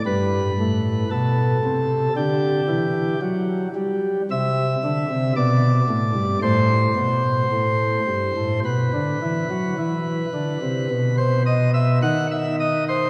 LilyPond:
<<
  \new Staff \with { instrumentName = "Pipe organ" } { \time 4/4 \key b \phrygian \tempo 4 = 55 b'4 a'4 g'4 r4 | e''4 d''4 c''2 | b'2~ b'16 c''16 dis''16 e''16 fis''16 e''16 dis''16 c''16 | }
  \new Staff \with { instrumentName = "Pipe organ" } { \clef bass \time 4/4 \key b \phrygian g,8 a,8 b,8 c8 d8 e8 fis8 g8 | c8 d16 c16 b,8 a,16 g,16 a,8 b,8 a,8 g,16 a,16 | b,16 d16 e16 fis16 e8 d16 c16 b,4 dis4 | }
>>